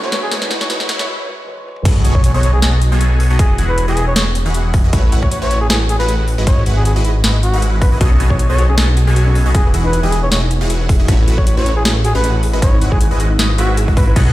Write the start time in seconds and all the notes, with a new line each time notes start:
Already playing: C#3 A3 B3 F#4 B4 C#5, riser
0.03 A2 A3 E4 F#4 B4 C#5
0.10 G#3 D#4 E4 F#4 B4 C#5, snare, closed hi-hat
0.23 G#4
0.30 G#1 G#3 E4 F#4 B4 C#5, snare, closed hi-hat
0.42 snare
0.51 G#1 G#3 E4 F#4 B4 F#5, snare, closed hi-hat
0.61 C#5, snare
0.68 G#1 G#3 E4 F#4 B4 C#5, snare, closed hi-hat
0.80 snare
0.89 G#1 G#3 E4 F#4 B4 F#5, snare, closed hi-hat
0.99 C#5, snare
1.06 G#3 F#4 B4 C#5
1.25 G#3 F#4 B4
1.30 C#5
1.45 G#3 F#4 B4 C#5, high tom
1.57 high tom
1.64 G#3 F#4 B4
1.68 C#5
1.76 mid tom
1.85 B1 B3 F#4 G#4 A4 C#5 D#5, kick, closed hi-hat, crash, impact
2.05 B1 B3 F#4 G#4 A4 C#5 G#5, closed hi-hat
2.15 C#5, kick
2.24 C#5, closed hi-hat
2.34 B1 B3 F#4 G#4 A4 C#5 D#5
2.43 closed hi-hat
2.53 G#4
2.62 B1 B3 F#4 G#4 A4 C#5 D#5, snare, closed hi-hat
2.82 closed hi-hat
2.92 B1 B3 F#4 G#4 A4 C#5 G#5
3.01 closed hi-hat
3.20 open hi-hat
3.30 B1 B3 F#4 G#4 A4 C#5 D#5
3.39 E1 E3 E4 G#4 D#5, kick, closed hi-hat
3.58 E1 E3 E4 F#4 G#4 F#5, closed hi-hat
3.69 B4
3.78 closed hi-hat
3.88 E1 E3 E4 F#4 G#4 D#5
3.97 closed hi-hat
4.07 C#5
4.16 E1 E3 E4 F#4 G#4 C#5 D#5, snare, closed hi-hat
4.35 closed hi-hat
4.46 E1 E3 E4 F#4 G#4 F#5
4.54 closed hi-hat
4.74 kick, open hi-hat
4.84 E2 E3 E4 F#4 G#4 D#5
4.93 A1 A3 E4 F#4 B4 C#5, kick, closed hi-hat
5.12 A1 A3 E4 F#4 B4 F#5, closed hi-hat
5.23 C#5, kick
5.31 C#5, closed hi-hat
5.42 A1 A3 E4 F#4 B4 C#5
5.51 closed hi-hat
5.61 G#4
5.70 A1 A3 E4 F#4 G#4 B4 C#5, snare, closed hi-hat
5.89 G#4, closed hi-hat
5.99 A1 A3 E4 F#4 B4 F#5
6.09 closed hi-hat
6.28 open hi-hat
6.38 G#1 G#3 E4 F#4 B4 D#5
6.47 G#1 G#3 E4 F#4 B4 C#5 D#5, kick, closed hi-hat
6.66 G#1 G#3 E4 F#4 B4 F#5, closed hi-hat
6.76 G#4
6.85 G#4, closed hi-hat
6.96 G#1 G#3 E4 F#4 B4 D#5
7.05 closed hi-hat
7.24 G#1 G#3 E4 F#4 B4 D#5, snare, closed hi-hat
7.43 F#4, closed hi-hat
7.53 G#1 G#3 E4 F#4 B4 F#5
7.62 closed hi-hat
7.81 B4, kick, open hi-hat
7.92 G#1 G#3 E4 F#4 B4 D#5
8.01 B1 B3 F#4 G#4 A4 C#5 D#5, kick, closed hi-hat
8.11 C#4
8.20 B1 B3 C#4 F#4 G#4 A4 C#5 G#5, closed hi-hat
8.30 D#4 C#5, kick
8.39 F#4 C#5, closed hi-hat
8.49 B1 B3 F#4 G#4 A4 C#5 D#5
8.58 F#4, closed hi-hat
8.69 C#4 G#4
8.78 B1 B3 C#4 F#4 G#4 A4 C#5 D#5, snare, closed hi-hat
8.88 D#4
8.97 F#4, closed hi-hat
9.07 B1 B3 F#4 G#4 A4 C#5 G#5
9.16 F#4, closed hi-hat
9.27 C#4
9.35 C#4, open hi-hat
9.46 B1 B3 D#4 F#4 G#4 A4 C#5 D#5
9.55 E1 E3 E4 F#4 G#4 D#5, kick, closed hi-hat
9.65 B4
9.74 E1 E3 E4 F#4 G#4 F#5, closed hi-hat
9.84 D#4 B4
9.93 D#4, closed hi-hat
10.03 E1 E3 E4 F#4 G#4 D#5
10.12 G#4, closed hi-hat
10.23 B4 C#5
10.31 E1 E3 E4 F#4 G#4 C#5 D#5, snare, closed hi-hat
10.42 D#4
10.51 D#4, closed hi-hat
10.61 E1 E3 E4 F#4 G#4 F#5
10.70 G#4, closed hi-hat
10.81 B4
10.89 G#4, kick, open hi-hat
10.99 E1 E3 D#4 E4 F#4 G#4 D#5
11.08 A1 A3 C#4 E4 F#4 B4 C#5, kick, closed hi-hat
11.19 E4
11.28 A1 A3 E4 F#4 B4 F#5, closed hi-hat
11.38 A4 C#5, kick
11.47 F#4 C#5, closed hi-hat
11.57 A1 A3 C#4 E4 F#4 B4 C#5
11.66 C#4, closed hi-hat
11.76 E4 G#4
11.85 A1 A3 E4 F#4 G#4 B4 C#5, snare, closed hi-hat
11.96 A4
12.04 F#4 G#4, closed hi-hat
12.15 A1 A3 C#4 E4 F#4 B4 F#5
12.24 C#4, closed hi-hat
12.34 E4
12.43 G#4, open hi-hat
12.53 G#1 G#3 E4 F#4 B4 D#5
12.62 G#1 G#3 E4 F#4 G#4 B4 C#5 D#5, kick, closed hi-hat
12.73 D#4
12.81 G#1 G#3 D#4 E4 F#4 B4 F#5, closed hi-hat
12.92 E4 G#4, kick
13.01 G#4, closed hi-hat
13.11 G#1 G#3 E4 F#4 B4 D#5
13.20 G#4, closed hi-hat
13.30 D#4
13.39 G#1 G#3 D#4 E4 F#4 B4 D#5, snare, closed hi-hat
13.50 E4
13.58 G#1 G#3 E4 F#4 G#4 B4 E5, closed hi-hat
13.69 B4
13.77 G#4, closed hi-hat
13.88 G#1 G#3 D#4 E4 F#4 B4 E5, kick
13.97 D#4 B4, kick, open hi-hat
14.07 E4 B4
14.16 B1 B3 F#4 G#4 A4 C#5 D#5, kick, closed hi-hat, crash